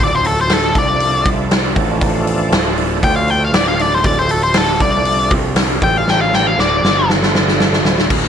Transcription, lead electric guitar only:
0.03 0.14 D5 medium
0.15 0.26 C5 medium
0.27 0.38 A4 medium
0.41 0.53 C5 medium
0.53 0.76 A4 loud
0.78 1.26 D5 loud
3.04 3.16 G5 loud
3.16 3.30 F5 medium
3.30 3.42 G5 medium
3.45 3.55 F5 medium
3.55 3.67 D5 medium
3.68 3.81 F5 medium
3.81 3.94 D5 medium
3.94 4.05 C5 medium
4.05 4.17 D5 medium
4.19 4.31 C5 medium
4.31 4.43 A4 medium
4.43 4.57 C5 medium
4.57 4.81 A4 medium
4.82 5.30 D5 loud
5.84 5.98 G5 loud
5.98 6.10 F5 medium
6.10 6.21 G5 medium
6.21 6.35 F5 medium
6.35 6.47 G5 medium
6.47 6.59 F5 medium
6.60 7.08 D5 loud

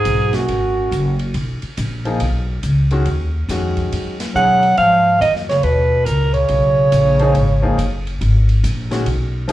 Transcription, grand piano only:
2.05 2.19 F3 medium
2.05 2.19 A#3 medium
2.05 2.20 D#4 medium
2.05 2.20 G#4 medium
2.91 3.05 D#3 medium
2.91 3.05 G#3 medium
2.91 3.06 C#4 medium
2.91 3.06 F#4 medium
3.49 4.14 D#3 medium
3.49 4.15 G#3 medium
3.49 4.15 C#4 medium
3.49 4.15 F#4 medium
4.35 4.60 D#3 medium
4.35 4.60 G#3 medium
4.35 4.61 C#4 medium
4.35 4.61 G#4 medium
7.20 7.33 F3 medium
7.20 7.34 A#3 medium
7.20 7.34 D#4 medium
7.20 7.35 G#4 medium
7.62 7.76 F3 medium
7.62 7.76 A#3 medium
7.62 7.77 D#4 medium
7.62 7.77 G#4 medium
8.91 9.05 D#3 medium
8.91 9.05 G#3 medium
8.91 9.05 C#4 medium
8.91 9.05 F#4 medium
9.48 9.52 F3 medium
9.48 9.52 A#3 medium
9.48 9.52 D#4 medium

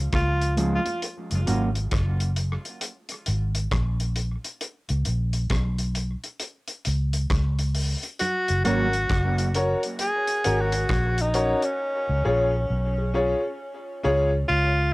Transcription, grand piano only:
8.65 8.90 C#4 medium
8.65 8.90 F#4 medium
8.65 8.90 A#4 medium
8.65 8.91 C#5 medium
9.55 9.80 C#4 medium
9.55 9.80 F#4 medium
9.55 9.80 A#4 medium
9.55 9.81 C#5 loud
10.44 10.70 C#4 loud
10.44 10.70 F#4 loud
10.44 10.70 A#4 medium
10.44 10.70 C#5 loud
10.73 10.80 A#4 soft
10.73 10.80 C#5 soft
11.34 11.59 C#4 loud
11.34 11.60 F#4 medium
11.34 11.60 A#4 medium
11.34 11.60 C#5 loud
12.24 12.49 C#4 medium
12.24 12.50 F4 medium
12.24 12.50 G#4 medium
12.24 12.50 C#5 loud
12.98 13.04 G#4 soft
12.98 13.04 C#5 soft
13.14 13.39 C#4 medium
13.14 13.39 F4 medium
13.14 13.39 G#4 medium
13.14 13.40 C#5 loud
14.03 14.29 C#4 loud
14.03 14.29 F4 medium
14.03 14.29 G#4 loud
14.03 14.29 C#5 loud

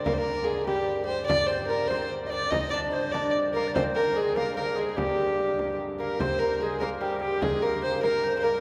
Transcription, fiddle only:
0.05 0.15 A#4 medium
0.13 0.19 C5 medium
0.18 0.45 A#4 medium
0.44 0.65 G#4 medium
0.66 1.05 G4 medium
1.05 1.25 C5 medium
1.26 1.48 D5 medium
1.47 1.66 C5 medium
1.67 1.89 A#4 medium
1.87 2.09 C5 medium
2.26 2.52 D5 medium
2.26 2.31 D#5 medium
2.51 2.70 D#5 loud
2.70 2.80 D5 medium
2.91 3.13 C5 medium
3.11 3.33 D5 medium
3.53 3.73 A#4 medium
3.74 3.84 C5 medium
3.95 4.17 A#4 medium
4.16 4.36 G#4 medium
4.37 4.55 A#4 medium
4.56 4.80 A#4 medium
4.78 4.90 G#4 medium
4.91 4.99 G#4 medium
4.97 5.79 G4 medium
6.00 6.21 A#4 medium
6.20 6.40 C5 medium
6.39 6.61 A#4 medium
6.60 6.79 G#4 medium
6.80 6.89 A#4 medium
7.01 7.20 G4 medium
7.21 7.43 G4 medium
7.42 7.63 G#4 medium
7.62 7.83 A#4 medium
7.84 8.02 C5 medium
8.03 8.36 A#4 medium
8.38 8.44 C5 medium
8.43 8.60 A#4 medium

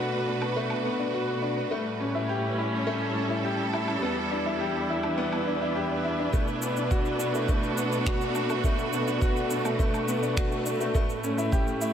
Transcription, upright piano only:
0.00 0.56 A3 medium
0.00 0.42 B3 medium
0.00 0.27 D4 medium
0.00 1.13 F#4 medium
0.27 0.41 D4 medium
0.42 0.56 B3 medium
0.56 0.70 A3 medium
0.85 0.99 B3 medium
0.99 1.13 D4 medium
1.13 1.22 F#4 medium
1.42 1.56 D4 medium
1.57 1.71 B3 medium
1.71 1.85 A3 medium
2.00 2.14 C#4 medium
2.15 2.29 E4 medium
2.29 2.38 G4 medium
2.58 2.72 E4 medium
2.72 2.86 C#4 medium
2.87 3.01 A3 loud
3.16 3.30 C#4 medium
3.30 3.44 E4 medium
3.45 3.53 G4 medium
3.74 3.87 E4 medium
3.88 4.02 C#4 medium
4.02 4.16 B3 medium
4.31 4.45 D4 medium
4.46 4.60 E4 medium
4.60 4.69 G4 medium
4.89 5.03 E4 medium
5.04 5.17 D4 medium
5.18 5.32 B3 loud
5.47 5.61 D4 medium
5.61 5.75 E4 medium
5.76 5.84 G4 medium
6.05 6.18 E4 medium
6.19 6.33 D4 medium
6.33 6.47 A3 medium
6.62 6.76 B3 medium
6.77 6.90 D4 medium
6.91 6.99 F#4 medium
7.20 7.34 D4 medium
7.34 7.47 A3 medium
7.49 7.63 A3 medium
7.78 7.92 B3 medium
7.93 8.06 D4 medium
8.07 8.15 F#4 medium
8.36 8.49 D4 medium
8.50 8.63 A3 medium
8.65 8.78 A3 medium
8.93 9.07 B3 medium
9.07 9.21 D4 medium
9.22 9.30 F#4 medium
9.51 9.64 D4 medium
9.65 9.78 A3 medium
9.79 9.93 A3 loud
10.08 10.22 B3 medium
10.23 10.36 D4 medium
10.37 10.45 F#4 medium
10.66 10.80 D4 medium
10.80 10.93 A3 medium
10.95 11.09 A3 loud
11.24 11.37 C#4 medium
11.38 11.52 E4 medium
11.53 11.61 G4 loud
11.81 11.93 E4 medium

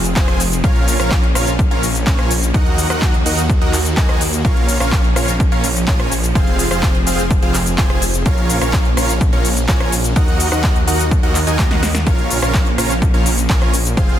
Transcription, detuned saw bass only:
0.00 0.14 F1 loud
0.16 0.61 F1 loud
0.64 0.97 A#1 medium
1.00 1.33 A#1 loud
1.35 1.69 A#1 medium
1.71 2.04 A#1 loud
2.07 2.52 A#1 medium
2.54 2.88 D#2 loud
2.90 3.23 D#2 loud
3.26 3.59 D#2 medium
3.61 3.95 D#2 loud
3.97 4.42 D#2 loud
4.45 4.78 A#1 loud
4.80 5.14 A#1 loud
5.16 5.50 A#1 medium
5.52 5.85 A#1 loud
5.88 6.33 A#1 loud
6.35 6.69 F1 loud
6.71 7.04 F1 loud
7.07 7.40 F1 medium
7.43 7.76 F1 loud
7.78 8.23 F1 loud
8.26 8.59 A#1 medium
8.61 8.95 A#1 medium
8.97 9.31 A#1 medium
9.33 9.66 A#1 loud
9.69 10.14 A#1 loud
10.16 10.50 D#2 medium
10.52 10.85 D#2 medium
10.87 11.21 D#2 loud
11.23 11.45 D#2 loud
11.47 11.69 D#2 loud
11.71 12.04 D#2 medium
12.07 12.40 A#1 loud
12.42 12.76 A#1 medium
12.78 13.12 A#1 loud
13.14 13.47 A#1 loud
13.50 13.95 A#1 loud
13.97 14.19 F1 medium

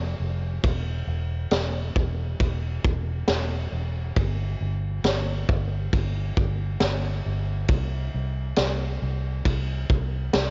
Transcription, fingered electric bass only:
0.00 0.14 F1 loud
0.20 0.58 F1 medium
0.63 1.02 E1 loud
1.07 1.46 E1 loud
1.51 1.90 E1 medium
1.96 2.35 E1 loud
2.40 2.79 E1 loud
2.84 3.23 E1 medium
3.28 3.67 E1 loud
3.72 4.11 E1 medium
4.16 4.55 G1 loud
4.61 4.99 G1 loud
5.04 5.43 G1 loud
5.49 5.88 G1 loud
5.93 6.32 G1 loud
6.37 6.76 G1 medium
6.81 7.20 G1 loud
7.26 7.64 G1 loud
7.69 8.08 C2 loud
8.14 8.53 C2 loud
8.58 8.97 C2 loud
9.02 9.41 C2 loud
9.45 9.84 C2 loud
9.90 10.29 C2 loud
10.34 10.50 C2 loud

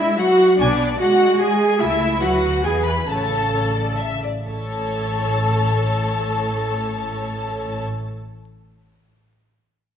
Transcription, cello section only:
0.00 0.19 G#3 medium
0.20 0.60 F#3 soft
0.60 1.00 B3 medium
1.00 1.79 G#3 medium
1.81 2.21 A3 medium
2.22 2.64 F#3 soft
2.64 3.09 E3 soft
3.09 4.21 C#3 soft
4.47 7.81 A2 soft

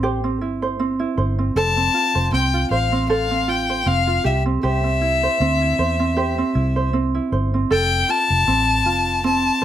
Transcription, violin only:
1.57 2.29 A5 loud
2.33 2.69 G5 medium
2.71 3.07 F5 medium
3.10 3.50 F5 medium
3.48 3.88 G5 medium
3.87 4.25 F5 medium
4.26 4.43 E5 medium
4.64 6.90 E5 medium
7.72 8.12 G5 loud
8.10 9.25 A5 loud
9.26 9.64 A5 medium

